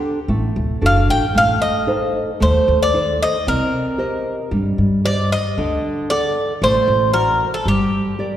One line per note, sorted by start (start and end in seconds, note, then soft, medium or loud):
0.00 0.18 D4 soft
0.00 0.26 G4 medium
0.00 0.19 A4 medium
0.00 0.18 F#5 soft
0.28 0.47 A1 medium
0.28 0.80 A3 medium
0.56 0.80 D1 medium
0.81 1.06 F#1 medium
0.81 1.24 D4 soft
0.81 1.24 F#4 soft
0.81 1.24 A4 soft
0.86 1.10 F5 medium
1.08 1.32 A1 medium
1.08 1.34 G5 medium
1.35 1.54 A1 medium
1.35 1.86 A3 medium
1.35 1.61 F5 loud
1.62 2.11 D#5 medium
1.87 2.30 D#4 soft
1.87 2.30 A4 soft
1.87 2.30 C5 medium
2.40 2.60 D#2 medium
2.40 2.92 A3 medium
2.40 2.79 C5 medium
2.68 3.23 D#2 medium
2.83 3.18 D5 medium
2.94 3.36 D#4 soft
2.94 3.36 A4 soft
2.94 3.36 C5 medium
3.23 3.46 D#5 medium
3.47 3.65 C2 medium
3.47 3.98 C4 medium
3.47 4.49 A#4 medium
3.98 4.41 G4 soft
3.98 4.41 C5 soft
3.98 4.41 D#5 medium
4.51 4.70 G2 medium
4.51 5.02 G3 medium
4.78 5.33 G2 medium
5.04 5.46 G4 soft
5.04 5.47 C5 soft
5.04 5.29 D5 medium
5.04 5.47 D#5 soft
5.32 6.10 D#5 medium
5.57 5.76 D2 medium
5.57 6.08 D3 medium
6.10 6.52 A4 soft
6.10 6.58 D5 medium
6.10 6.52 D5 soft
6.10 6.52 F#5 medium
6.62 6.80 A1 medium
6.62 7.13 A3 medium
6.62 7.11 C5 medium
6.88 7.42 A1 medium
7.13 7.55 F#4 soft
7.13 7.50 A#4 medium
7.13 7.55 D5 soft
7.13 7.55 F#5 medium
7.54 7.65 A4 medium
7.65 7.84 G1 medium
7.65 8.16 G3 medium
7.65 8.37 G4 medium
8.19 8.37 G4 medium
8.19 8.37 A#4 soft
8.19 8.37 D5 medium